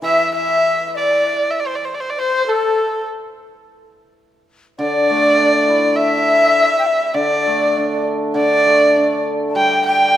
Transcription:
0.02 1.84 E3 medium
0.02 0.32 E5 medium
0.02 0.33 E5 medium
0.33 0.88 E5 medium
0.33 0.91 E5 medium
0.88 0.97 E5 medium
0.95 1.49 D5 medium
0.95 1.52 D5 medium
1.51 1.61 E5 medium
1.60 1.68 D5 medium
1.67 1.77 C5 medium
1.75 1.87 D5 medium
1.85 1.96 C5 medium
1.94 2.02 D5 medium
2.00 2.12 C5 medium
2.10 2.21 D5 medium
2.17 2.43 C5 medium
2.17 2.51 C5 medium
2.46 3.01 A4 medium
2.46 3.06 A4 medium
4.79 6.57 D3 medium
4.79 5.94 D5 medium
4.79 5.97 D5 loud
5.10 6.29 A3 soft
5.40 6.58 D4 medium
5.69 6.87 E4 soft
5.96 7.16 E5 loud
5.96 6.76 E5 loud
6.79 6.88 G5 medium
6.87 7.17 E5 medium
7.14 8.33 D3 medium
7.14 8.05 D5 medium
7.14 8.06 D5 medium
7.46 8.65 A3 soft
7.77 8.95 D4 soft
8.34 10.16 D3 medium
8.34 9.22 D5 medium
8.34 9.23 D5 loud
8.66 9.87 A3 soft
8.96 10.17 D4 soft
9.49 9.58 A5 medium
9.55 10.17 G3 medium
9.55 9.86 G5 medium
9.55 9.85 G5 loud
9.87 10.17 G5 loud
9.87 10.17 G5 medium

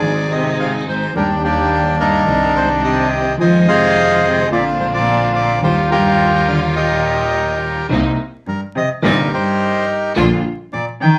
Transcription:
0.00 1.09 G#1 medium
0.00 0.26 G#2 medium
0.00 1.09 G#2 medium
0.00 1.08 D#3 medium
0.00 1.09 G#3 soft
0.00 1.09 G#3 medium
0.00 1.09 C4 medium
0.00 1.10 C4 soft
0.00 1.09 D#4 medium
0.00 0.84 G#4 medium
0.00 0.33 D5 loud
0.05 1.10 G#4 medium
0.29 0.56 C3 medium
0.29 0.57 D#5 medium
0.58 0.71 C3 medium
0.58 0.72 F5 medium
0.87 1.13 G#2 medium
0.87 1.14 C5 medium
1.15 2.22 D#2 medium
1.15 1.28 G2 medium
1.15 2.22 D#3 medium
1.15 2.22 G3 medium
1.15 2.22 A#3 medium
1.15 2.22 D4 medium
1.15 1.43 D4 medium
1.15 1.42 G4 medium
1.15 2.23 G4 medium
1.15 1.28 A#4 medium
1.43 1.95 D#2 medium
1.43 2.24 A#3 medium
1.43 1.99 D4 medium
1.43 1.96 G4 loud
1.99 2.51 G2 medium
1.99 3.08 D4 medium
1.99 3.08 D#4 medium
1.99 2.58 A#4 loud
2.25 3.33 C2 medium
2.25 3.34 C3 medium
2.25 3.33 D#3 medium
2.25 3.33 C4 medium
2.25 3.34 C4 medium
2.25 3.34 D4 medium
2.25 3.34 G4 medium
2.56 2.69 G#2 medium
2.56 2.69 C5 medium
2.83 3.35 C3 medium
2.83 3.36 G4 medium
2.83 3.36 D#5 medium
3.37 4.45 F2 medium
3.37 4.44 D#3 medium
3.37 3.65 F3 medium
3.37 4.45 F3 medium
3.37 4.44 G#3 medium
3.37 4.45 G#3 medium
3.37 4.45 C4 medium
3.37 4.45 D#4 medium
3.37 4.45 F4 medium
3.37 3.67 C5 medium
3.37 4.22 D#5 medium
3.37 3.66 G#5 medium
3.41 4.46 F4 medium
3.68 4.19 C3 medium
3.68 4.47 G#4 medium
3.68 4.47 C5 medium
3.68 4.25 F5 loud
4.24 4.49 C3 medium
4.24 4.49 D#5 loud
4.49 5.57 A#1 medium
4.49 5.57 A#2 medium
4.49 4.63 A#2 medium
4.49 5.56 D3 medium
4.49 5.56 A#3 medium
4.49 5.57 A#3 medium
4.49 5.57 C4 medium
4.49 5.57 D4 medium
4.49 4.93 F4 medium
4.49 4.64 D5 loud
4.53 5.58 F4 medium
4.79 4.85 G#2 medium
4.79 4.86 C5 medium
4.93 5.32 A#2 medium
4.93 5.59 F4 medium
4.93 5.32 D5 loud
5.35 5.61 A#2 medium
5.35 5.61 D5 medium
5.61 7.79 D#2 medium
5.61 5.76 G2 medium
5.61 7.79 D#3 medium
5.61 7.78 G3 medium
5.61 7.79 G3 medium
5.61 7.79 A#3 medium
5.61 7.79 D#4 medium
5.61 7.79 F4 medium
5.61 5.90 F4 medium
5.61 7.80 F4 medium
5.61 5.90 G4 medium
5.61 5.76 C5 medium
5.91 6.44 G2 medium
5.91 7.00 F4 medium
5.91 6.75 G4 medium
5.91 6.49 A#4 loud
6.47 6.60 D3 medium
6.47 6.60 F5 medium
6.76 7.58 A#2 medium
6.76 7.87 G4 medium
6.76 7.87 A#4 medium
6.76 7.58 D#5 medium
7.89 8.14 C2 medium
7.89 8.14 C3 medium
7.89 8.14 G3 medium
7.89 8.14 A#3 medium
7.89 8.14 C4 medium
7.89 8.14 D#4 medium
8.47 8.60 G2 medium
8.47 8.61 A#4 medium
8.76 8.88 C3 medium
8.76 8.89 D#5 loud
9.02 9.27 G1 medium
9.02 9.27 G1 loud
9.02 9.27 G2 medium
9.02 9.17 A#2 medium
9.02 9.27 C3 medium
9.02 9.27 G3 medium
9.02 9.27 A#3 medium
9.02 9.28 C4 medium
9.02 9.27 D#4 medium
9.02 9.28 D#4 medium
9.02 9.32 G4 medium
9.02 10.13 A#4 medium
9.02 9.17 D5 loud
9.33 9.85 G2 medium
9.33 10.13 D#4 medium
9.33 10.13 G4 medium
9.33 9.85 C5 medium
10.15 10.40 A#1 medium
10.15 10.40 A#1 loud
10.15 10.40 A#2 loud
10.15 10.39 D3 medium
10.15 10.39 F3 medium
10.15 10.40 A#3 medium
10.15 10.40 D4 medium
10.15 10.40 F4 medium
10.73 10.86 A#2 medium
10.73 10.85 D5 medium
11.01 11.19 D#3 loud
11.01 11.19 G5 loud

